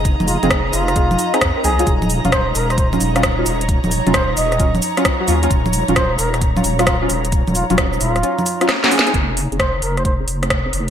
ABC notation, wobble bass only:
X:1
M:4/4
L:1/16
Q:"Swing 16ths" 1/4=132
K:Ebdor
V:1 name="Wobble bass" clef=bass
F,,, F,,,2 F,,,3 F,,,4 z2 F,, z C,,2 | E,,,3 E,,,3 E,,,4 E,,,4 E,,,2- | E,,, E,,,2 E,,,3 E,,,4 z4 E,,2 | E,,,3 E,,,3 E,,,4 E,,,4 E,,,2- |
E,,, E,,,2 E,,,3 E,,,2 z8 | F,,,3 F,,,3 F,,,4 F,,,4 F,,,2 |]